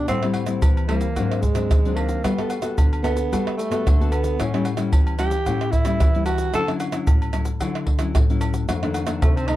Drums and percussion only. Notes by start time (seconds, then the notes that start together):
0.08 pandeiro, tamborim, low agogo, shaker, surdo
0.23 pandeiro, tamborim, shaker
0.34 pandeiro, low agogo
0.47 pandeiro, tamborim, shaker
0.62 pandeiro, high agogo, shaker, surdo
0.77 pandeiro, high agogo, shaker
0.89 pandeiro, tamborim, high agogo
1.01 pandeiro, shaker
1.16 pandeiro, low agogo, shaker, surdo
1.32 pandeiro, tamborim, shaker
1.43 pandeiro, shaker, surdo
1.55 pandeiro, tamborim, shaker
1.71 pandeiro, tamborim, shaker, surdo
1.85 pandeiro, shaker
1.97 pandeiro, high agogo
2.09 pandeiro, shaker
2.24 pandeiro, tamborim, low agogo, shaker, surdo
2.38 pandeiro, tamborim, shaker
2.50 pandeiro, low agogo, shaker
2.62 pandeiro, tamborim, shaker
2.78 pandeiro, high agogo, shaker, surdo
2.93 pandeiro, high agogo, shaker
3.04 pandeiro, tamborim, high agogo, shaker
3.17 pandeiro, shaker
3.33 pandeiro, low agogo, shaker, surdo
3.47 pandeiro, tamborim, shaker
3.59 pandeiro, shaker
3.72 pandeiro, tamborim, shaker
3.87 pandeiro, tamborim, shaker, surdo
4.01 pandeiro, shaker
4.12 pandeiro, high agogo, shaker
4.24 pandeiro, shaker
4.40 pandeiro, tamborim, low agogo, shaker, surdo
4.54 pandeiro, tamborim, shaker
4.65 pandeiro, low agogo, shaker
4.77 pandeiro, tamborim, shaker
4.93 pandeiro, high agogo, shaker, surdo
5.07 pandeiro, high agogo, shaker
5.19 pandeiro, tamborim, high agogo, shaker
5.31 pandeiro, shaker
5.46 pandeiro, low agogo, shaker, surdo
5.61 pandeiro, tamborim, shaker
5.73 pandeiro, shaker, surdo
5.85 pandeiro, tamborim, shaker
6.00 pandeiro, tamborim, shaker, surdo
6.15 pandeiro, shaker
6.26 pandeiro, high agogo, shaker
6.38 pandeiro, shaker
6.54 pandeiro, tamborim, low agogo, shaker, surdo
6.68 pandeiro, tamborim, shaker
6.80 pandeiro, low agogo, shaker
6.92 pandeiro, tamborim, shaker
7.07 pandeiro, high agogo, shaker, surdo
7.22 pandeiro, high agogo, shaker
7.33 pandeiro, tamborim, high agogo, shaker
7.45 pandeiro, shaker
7.61 pandeiro, low agogo, shaker, surdo
7.75 pandeiro, tamborim, shaker
7.87 pandeiro, surdo
7.99 pandeiro, tamborim, shaker
8.15 pandeiro, tamborim, shaker, surdo
8.30 pandeiro, shaker
8.41 pandeiro, high agogo, shaker
8.54 pandeiro, shaker
8.69 pandeiro, tamborim, low agogo, shaker, surdo
8.83 pandeiro, tamborim, shaker
8.94 pandeiro, low agogo, shaker
9.07 pandeiro, tamborim, shaker
9.22 pandeiro, high agogo, shaker, surdo
9.37 pandeiro, high agogo, shaker
9.48 pandeiro, tamborim, high agogo